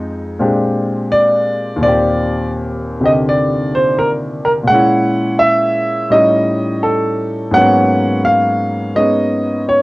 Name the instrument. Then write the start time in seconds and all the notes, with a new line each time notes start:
grand piano
Already playing: F2 F3 G#3 D#4
0.39 A#2 G#3 C4 D4 G4
1.12 D5
1.76 D#2 A#2
1.83 C4 D5
1.88 G4
3.00 C3 D3 G4
3.05 D#5
3.29 D5
3.75 C5
3.98 A#4
4.45 A#4
4.63 A#2
4.67 G#3 C#4 F#5
4.74 E4
5.39 E5
6.10 A2 G3 C#4 D#4 D#5
6.83 A4
7.51 G#2 F#3 A#3 B3 F#5
7.56 C#4
8.25 F5
8.95 G#3 B3 C#4 D#4 D#5
9.69 C#5